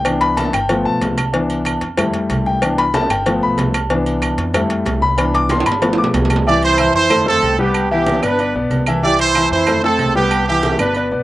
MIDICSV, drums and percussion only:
0, 0, Header, 1, 2, 480
1, 0, Start_track
1, 0, Key_signature, 0, "major"
1, 0, Tempo, 320513
1, 82, Time_signature, 4, 2, 24, 8
1, 16820, End_track
2, 0, Start_track
2, 0, Title_t, "Drums"
2, 73, Note_on_c, 9, 56, 99
2, 82, Note_on_c, 9, 63, 36
2, 83, Note_on_c, 9, 68, 109
2, 85, Note_on_c, 9, 75, 66
2, 223, Note_off_c, 9, 56, 0
2, 232, Note_off_c, 9, 63, 0
2, 233, Note_off_c, 9, 68, 0
2, 235, Note_off_c, 9, 75, 0
2, 314, Note_on_c, 9, 56, 73
2, 322, Note_on_c, 9, 63, 37
2, 464, Note_off_c, 9, 56, 0
2, 472, Note_off_c, 9, 63, 0
2, 558, Note_on_c, 9, 56, 74
2, 563, Note_on_c, 9, 63, 97
2, 570, Note_on_c, 9, 68, 93
2, 708, Note_off_c, 9, 56, 0
2, 713, Note_off_c, 9, 63, 0
2, 719, Note_off_c, 9, 68, 0
2, 798, Note_on_c, 9, 56, 70
2, 806, Note_on_c, 9, 63, 37
2, 808, Note_on_c, 9, 68, 112
2, 810, Note_on_c, 9, 75, 71
2, 948, Note_off_c, 9, 56, 0
2, 956, Note_off_c, 9, 63, 0
2, 958, Note_off_c, 9, 68, 0
2, 960, Note_off_c, 9, 75, 0
2, 1037, Note_on_c, 9, 56, 112
2, 1042, Note_on_c, 9, 63, 36
2, 1049, Note_on_c, 9, 68, 82
2, 1186, Note_off_c, 9, 56, 0
2, 1191, Note_off_c, 9, 63, 0
2, 1199, Note_off_c, 9, 68, 0
2, 1285, Note_on_c, 9, 63, 35
2, 1434, Note_off_c, 9, 63, 0
2, 1520, Note_on_c, 9, 56, 76
2, 1522, Note_on_c, 9, 63, 86
2, 1532, Note_on_c, 9, 66, 69
2, 1532, Note_on_c, 9, 68, 89
2, 1670, Note_off_c, 9, 56, 0
2, 1671, Note_off_c, 9, 63, 0
2, 1682, Note_off_c, 9, 66, 0
2, 1682, Note_off_c, 9, 68, 0
2, 1761, Note_on_c, 9, 68, 109
2, 1764, Note_on_c, 9, 56, 70
2, 1766, Note_on_c, 9, 63, 69
2, 1775, Note_on_c, 9, 75, 73
2, 1910, Note_off_c, 9, 68, 0
2, 1914, Note_off_c, 9, 56, 0
2, 1915, Note_off_c, 9, 63, 0
2, 1925, Note_off_c, 9, 75, 0
2, 2001, Note_on_c, 9, 56, 108
2, 2010, Note_on_c, 9, 63, 37
2, 2151, Note_off_c, 9, 56, 0
2, 2160, Note_off_c, 9, 63, 0
2, 2243, Note_on_c, 9, 68, 76
2, 2393, Note_off_c, 9, 68, 0
2, 2473, Note_on_c, 9, 56, 67
2, 2486, Note_on_c, 9, 63, 65
2, 2490, Note_on_c, 9, 68, 114
2, 2494, Note_on_c, 9, 75, 75
2, 2622, Note_off_c, 9, 56, 0
2, 2636, Note_off_c, 9, 63, 0
2, 2640, Note_off_c, 9, 68, 0
2, 2644, Note_off_c, 9, 75, 0
2, 2715, Note_on_c, 9, 56, 69
2, 2730, Note_on_c, 9, 63, 35
2, 2865, Note_off_c, 9, 56, 0
2, 2879, Note_off_c, 9, 63, 0
2, 2957, Note_on_c, 9, 56, 112
2, 2967, Note_on_c, 9, 63, 36
2, 2967, Note_on_c, 9, 64, 85
2, 2972, Note_on_c, 9, 68, 110
2, 2976, Note_on_c, 9, 75, 69
2, 3107, Note_off_c, 9, 56, 0
2, 3117, Note_off_c, 9, 63, 0
2, 3117, Note_off_c, 9, 64, 0
2, 3122, Note_off_c, 9, 68, 0
2, 3126, Note_off_c, 9, 75, 0
2, 3198, Note_on_c, 9, 56, 71
2, 3205, Note_on_c, 9, 63, 38
2, 3348, Note_off_c, 9, 56, 0
2, 3354, Note_off_c, 9, 63, 0
2, 3440, Note_on_c, 9, 56, 74
2, 3451, Note_on_c, 9, 63, 90
2, 3456, Note_on_c, 9, 68, 85
2, 3590, Note_off_c, 9, 56, 0
2, 3600, Note_off_c, 9, 63, 0
2, 3605, Note_off_c, 9, 68, 0
2, 3687, Note_on_c, 9, 63, 83
2, 3836, Note_off_c, 9, 63, 0
2, 3923, Note_on_c, 9, 56, 100
2, 3926, Note_on_c, 9, 63, 37
2, 3934, Note_on_c, 9, 75, 70
2, 3935, Note_on_c, 9, 68, 102
2, 4072, Note_off_c, 9, 56, 0
2, 4076, Note_off_c, 9, 63, 0
2, 4084, Note_off_c, 9, 75, 0
2, 4085, Note_off_c, 9, 68, 0
2, 4164, Note_on_c, 9, 63, 37
2, 4168, Note_on_c, 9, 56, 77
2, 4314, Note_off_c, 9, 63, 0
2, 4318, Note_off_c, 9, 56, 0
2, 4400, Note_on_c, 9, 63, 106
2, 4403, Note_on_c, 9, 68, 94
2, 4407, Note_on_c, 9, 56, 71
2, 4550, Note_off_c, 9, 63, 0
2, 4552, Note_off_c, 9, 68, 0
2, 4557, Note_off_c, 9, 56, 0
2, 4642, Note_on_c, 9, 63, 36
2, 4644, Note_on_c, 9, 68, 116
2, 4645, Note_on_c, 9, 56, 66
2, 4648, Note_on_c, 9, 75, 70
2, 4791, Note_off_c, 9, 63, 0
2, 4794, Note_off_c, 9, 68, 0
2, 4795, Note_off_c, 9, 56, 0
2, 4798, Note_off_c, 9, 75, 0
2, 4881, Note_on_c, 9, 68, 89
2, 4883, Note_on_c, 9, 63, 37
2, 4888, Note_on_c, 9, 56, 113
2, 5031, Note_off_c, 9, 68, 0
2, 5033, Note_off_c, 9, 63, 0
2, 5038, Note_off_c, 9, 56, 0
2, 5120, Note_on_c, 9, 63, 38
2, 5270, Note_off_c, 9, 63, 0
2, 5353, Note_on_c, 9, 63, 89
2, 5358, Note_on_c, 9, 66, 72
2, 5358, Note_on_c, 9, 68, 86
2, 5372, Note_on_c, 9, 56, 74
2, 5503, Note_off_c, 9, 63, 0
2, 5508, Note_off_c, 9, 66, 0
2, 5508, Note_off_c, 9, 68, 0
2, 5521, Note_off_c, 9, 56, 0
2, 5604, Note_on_c, 9, 68, 111
2, 5607, Note_on_c, 9, 75, 74
2, 5608, Note_on_c, 9, 56, 72
2, 5754, Note_off_c, 9, 68, 0
2, 5756, Note_off_c, 9, 75, 0
2, 5758, Note_off_c, 9, 56, 0
2, 5843, Note_on_c, 9, 56, 109
2, 5992, Note_off_c, 9, 56, 0
2, 6080, Note_on_c, 9, 63, 38
2, 6085, Note_on_c, 9, 68, 69
2, 6230, Note_off_c, 9, 63, 0
2, 6235, Note_off_c, 9, 68, 0
2, 6316, Note_on_c, 9, 63, 69
2, 6318, Note_on_c, 9, 56, 71
2, 6325, Note_on_c, 9, 75, 78
2, 6333, Note_on_c, 9, 68, 111
2, 6465, Note_off_c, 9, 63, 0
2, 6468, Note_off_c, 9, 56, 0
2, 6475, Note_off_c, 9, 75, 0
2, 6483, Note_off_c, 9, 68, 0
2, 6555, Note_on_c, 9, 63, 38
2, 6560, Note_on_c, 9, 56, 75
2, 6704, Note_off_c, 9, 63, 0
2, 6710, Note_off_c, 9, 56, 0
2, 6796, Note_on_c, 9, 63, 34
2, 6796, Note_on_c, 9, 64, 89
2, 6803, Note_on_c, 9, 68, 114
2, 6804, Note_on_c, 9, 56, 108
2, 6806, Note_on_c, 9, 75, 67
2, 6946, Note_off_c, 9, 63, 0
2, 6946, Note_off_c, 9, 64, 0
2, 6953, Note_off_c, 9, 68, 0
2, 6954, Note_off_c, 9, 56, 0
2, 6956, Note_off_c, 9, 75, 0
2, 7039, Note_on_c, 9, 56, 79
2, 7041, Note_on_c, 9, 63, 36
2, 7188, Note_off_c, 9, 56, 0
2, 7191, Note_off_c, 9, 63, 0
2, 7274, Note_on_c, 9, 63, 87
2, 7278, Note_on_c, 9, 66, 75
2, 7278, Note_on_c, 9, 68, 85
2, 7283, Note_on_c, 9, 56, 77
2, 7424, Note_off_c, 9, 63, 0
2, 7428, Note_off_c, 9, 66, 0
2, 7428, Note_off_c, 9, 68, 0
2, 7433, Note_off_c, 9, 56, 0
2, 7518, Note_on_c, 9, 63, 85
2, 7668, Note_off_c, 9, 63, 0
2, 7754, Note_on_c, 9, 63, 38
2, 7754, Note_on_c, 9, 68, 113
2, 7763, Note_on_c, 9, 56, 105
2, 7767, Note_on_c, 9, 75, 68
2, 7903, Note_off_c, 9, 68, 0
2, 7904, Note_off_c, 9, 63, 0
2, 7912, Note_off_c, 9, 56, 0
2, 7916, Note_off_c, 9, 75, 0
2, 7991, Note_on_c, 9, 63, 39
2, 8008, Note_on_c, 9, 56, 74
2, 8140, Note_off_c, 9, 63, 0
2, 8158, Note_off_c, 9, 56, 0
2, 8227, Note_on_c, 9, 63, 106
2, 8234, Note_on_c, 9, 65, 84
2, 8234, Note_on_c, 9, 68, 94
2, 8238, Note_on_c, 9, 56, 70
2, 8377, Note_off_c, 9, 63, 0
2, 8383, Note_off_c, 9, 65, 0
2, 8383, Note_off_c, 9, 68, 0
2, 8388, Note_off_c, 9, 56, 0
2, 8392, Note_on_c, 9, 65, 110
2, 8475, Note_on_c, 9, 63, 39
2, 8476, Note_on_c, 9, 56, 69
2, 8478, Note_on_c, 9, 75, 68
2, 8480, Note_on_c, 9, 68, 116
2, 8542, Note_off_c, 9, 65, 0
2, 8561, Note_on_c, 9, 66, 76
2, 8625, Note_off_c, 9, 63, 0
2, 8626, Note_off_c, 9, 56, 0
2, 8628, Note_off_c, 9, 75, 0
2, 8629, Note_off_c, 9, 68, 0
2, 8711, Note_off_c, 9, 66, 0
2, 8714, Note_on_c, 9, 66, 88
2, 8714, Note_on_c, 9, 68, 82
2, 8719, Note_on_c, 9, 63, 34
2, 8721, Note_on_c, 9, 56, 105
2, 8863, Note_off_c, 9, 66, 0
2, 8863, Note_off_c, 9, 68, 0
2, 8868, Note_off_c, 9, 63, 0
2, 8871, Note_off_c, 9, 56, 0
2, 8882, Note_on_c, 9, 65, 88
2, 8959, Note_on_c, 9, 63, 36
2, 9031, Note_off_c, 9, 65, 0
2, 9043, Note_on_c, 9, 66, 104
2, 9109, Note_off_c, 9, 63, 0
2, 9192, Note_off_c, 9, 66, 0
2, 9195, Note_on_c, 9, 56, 80
2, 9198, Note_on_c, 9, 66, 88
2, 9198, Note_on_c, 9, 68, 90
2, 9199, Note_on_c, 9, 63, 80
2, 9345, Note_off_c, 9, 56, 0
2, 9347, Note_off_c, 9, 66, 0
2, 9347, Note_off_c, 9, 68, 0
2, 9349, Note_off_c, 9, 63, 0
2, 9360, Note_on_c, 9, 66, 88
2, 9435, Note_on_c, 9, 56, 68
2, 9438, Note_on_c, 9, 68, 103
2, 9440, Note_on_c, 9, 75, 73
2, 9443, Note_on_c, 9, 63, 71
2, 9510, Note_off_c, 9, 66, 0
2, 9526, Note_on_c, 9, 66, 97
2, 9584, Note_off_c, 9, 56, 0
2, 9588, Note_off_c, 9, 68, 0
2, 9589, Note_off_c, 9, 75, 0
2, 9593, Note_off_c, 9, 63, 0
2, 9675, Note_off_c, 9, 66, 0
2, 9687, Note_on_c, 9, 63, 39
2, 9836, Note_off_c, 9, 63, 0
2, 9921, Note_on_c, 9, 68, 71
2, 9926, Note_on_c, 9, 63, 38
2, 10071, Note_off_c, 9, 68, 0
2, 10076, Note_off_c, 9, 63, 0
2, 10149, Note_on_c, 9, 68, 113
2, 10156, Note_on_c, 9, 75, 77
2, 10162, Note_on_c, 9, 63, 71
2, 10299, Note_off_c, 9, 68, 0
2, 10306, Note_off_c, 9, 75, 0
2, 10312, Note_off_c, 9, 63, 0
2, 10402, Note_on_c, 9, 63, 38
2, 10552, Note_off_c, 9, 63, 0
2, 10635, Note_on_c, 9, 68, 108
2, 10644, Note_on_c, 9, 63, 37
2, 10644, Note_on_c, 9, 64, 88
2, 10644, Note_on_c, 9, 75, 71
2, 10785, Note_off_c, 9, 68, 0
2, 10794, Note_off_c, 9, 63, 0
2, 10794, Note_off_c, 9, 64, 0
2, 10794, Note_off_c, 9, 75, 0
2, 10883, Note_on_c, 9, 63, 37
2, 10883, Note_on_c, 9, 64, 77
2, 11033, Note_off_c, 9, 63, 0
2, 11033, Note_off_c, 9, 64, 0
2, 11117, Note_on_c, 9, 68, 90
2, 11120, Note_on_c, 9, 63, 81
2, 11266, Note_off_c, 9, 68, 0
2, 11270, Note_off_c, 9, 63, 0
2, 11366, Note_on_c, 9, 63, 84
2, 11516, Note_off_c, 9, 63, 0
2, 11597, Note_on_c, 9, 68, 109
2, 11602, Note_on_c, 9, 75, 71
2, 11610, Note_on_c, 9, 63, 39
2, 11747, Note_off_c, 9, 68, 0
2, 11752, Note_off_c, 9, 75, 0
2, 11760, Note_off_c, 9, 63, 0
2, 11848, Note_on_c, 9, 63, 38
2, 11997, Note_off_c, 9, 63, 0
2, 12078, Note_on_c, 9, 63, 108
2, 12079, Note_on_c, 9, 68, 90
2, 12227, Note_off_c, 9, 63, 0
2, 12229, Note_off_c, 9, 68, 0
2, 12322, Note_on_c, 9, 75, 66
2, 12328, Note_on_c, 9, 63, 36
2, 12330, Note_on_c, 9, 68, 110
2, 12471, Note_off_c, 9, 75, 0
2, 12478, Note_off_c, 9, 63, 0
2, 12480, Note_off_c, 9, 68, 0
2, 12561, Note_on_c, 9, 63, 38
2, 12563, Note_on_c, 9, 68, 89
2, 12711, Note_off_c, 9, 63, 0
2, 12713, Note_off_c, 9, 68, 0
2, 12795, Note_on_c, 9, 63, 37
2, 12945, Note_off_c, 9, 63, 0
2, 13036, Note_on_c, 9, 63, 87
2, 13042, Note_on_c, 9, 68, 88
2, 13186, Note_off_c, 9, 63, 0
2, 13192, Note_off_c, 9, 68, 0
2, 13275, Note_on_c, 9, 63, 77
2, 13276, Note_on_c, 9, 75, 78
2, 13282, Note_on_c, 9, 68, 110
2, 13424, Note_off_c, 9, 63, 0
2, 13426, Note_off_c, 9, 75, 0
2, 13431, Note_off_c, 9, 68, 0
2, 13519, Note_on_c, 9, 63, 39
2, 13669, Note_off_c, 9, 63, 0
2, 13759, Note_on_c, 9, 63, 36
2, 13762, Note_on_c, 9, 68, 76
2, 13908, Note_off_c, 9, 63, 0
2, 13911, Note_off_c, 9, 68, 0
2, 13994, Note_on_c, 9, 63, 68
2, 14005, Note_on_c, 9, 68, 112
2, 14006, Note_on_c, 9, 75, 78
2, 14144, Note_off_c, 9, 63, 0
2, 14155, Note_off_c, 9, 68, 0
2, 14156, Note_off_c, 9, 75, 0
2, 14245, Note_on_c, 9, 63, 36
2, 14394, Note_off_c, 9, 63, 0
2, 14476, Note_on_c, 9, 68, 108
2, 14482, Note_on_c, 9, 75, 67
2, 14483, Note_on_c, 9, 63, 37
2, 14483, Note_on_c, 9, 64, 91
2, 14625, Note_off_c, 9, 68, 0
2, 14632, Note_off_c, 9, 63, 0
2, 14632, Note_off_c, 9, 64, 0
2, 14632, Note_off_c, 9, 75, 0
2, 14724, Note_on_c, 9, 63, 37
2, 14874, Note_off_c, 9, 63, 0
2, 14960, Note_on_c, 9, 66, 75
2, 14960, Note_on_c, 9, 68, 84
2, 14966, Note_on_c, 9, 63, 86
2, 15110, Note_off_c, 9, 66, 0
2, 15110, Note_off_c, 9, 68, 0
2, 15116, Note_off_c, 9, 63, 0
2, 15203, Note_on_c, 9, 63, 87
2, 15352, Note_off_c, 9, 63, 0
2, 15439, Note_on_c, 9, 68, 114
2, 15442, Note_on_c, 9, 63, 36
2, 15447, Note_on_c, 9, 75, 68
2, 15589, Note_off_c, 9, 68, 0
2, 15592, Note_off_c, 9, 63, 0
2, 15596, Note_off_c, 9, 75, 0
2, 15688, Note_on_c, 9, 63, 37
2, 15838, Note_off_c, 9, 63, 0
2, 15915, Note_on_c, 9, 68, 89
2, 15922, Note_on_c, 9, 63, 100
2, 16065, Note_off_c, 9, 68, 0
2, 16071, Note_off_c, 9, 63, 0
2, 16159, Note_on_c, 9, 68, 114
2, 16164, Note_on_c, 9, 75, 73
2, 16171, Note_on_c, 9, 63, 39
2, 16309, Note_off_c, 9, 68, 0
2, 16313, Note_off_c, 9, 75, 0
2, 16321, Note_off_c, 9, 63, 0
2, 16391, Note_on_c, 9, 68, 84
2, 16407, Note_on_c, 9, 63, 38
2, 16540, Note_off_c, 9, 68, 0
2, 16556, Note_off_c, 9, 63, 0
2, 16646, Note_on_c, 9, 63, 37
2, 16795, Note_off_c, 9, 63, 0
2, 16820, End_track
0, 0, End_of_file